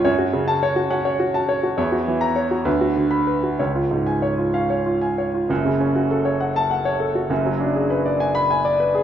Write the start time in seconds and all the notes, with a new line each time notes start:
0.05 F#2 C#5
0.19 F#4
0.33 C#3
0.48 A5
0.63 C#5
0.76 F#4
0.90 C#4 F#5
1.05 C#5
1.20 F#4
1.34 A5
1.49 C#5
1.63 F#4
1.78 E2 C#5
1.92 F#4
2.08 E3
2.21 A#5
2.36 C#5
2.51 F#4
2.65 D2 B4
2.81 F#4
2.96 D3
3.11 B5
3.27 B4
3.43 F#4
3.59 C#2 C#5
3.75 F4
3.91 G#2
4.07 G#5
4.22 C#5
4.38 F4
4.54 C#4 F5
4.70 C#5
4.86 F4
5.02 G#5
5.18 C#5
5.34 F4
5.49 F#1 F#2
5.65 C#3
5.80 C#4
5.96 F#4
6.11 A4
6.25 C#5
6.40 F#5
6.56 A5
6.71 F#5
6.85 C#5
7.00 A4
7.15 F#4
7.29 F#1 F#2
7.45 F#3
7.60 D4
7.75 G#4
7.90 B4
8.06 D5
8.20 G#5
8.35 B5
8.51 G#5
8.65 D5
8.80 B4
8.95 G#4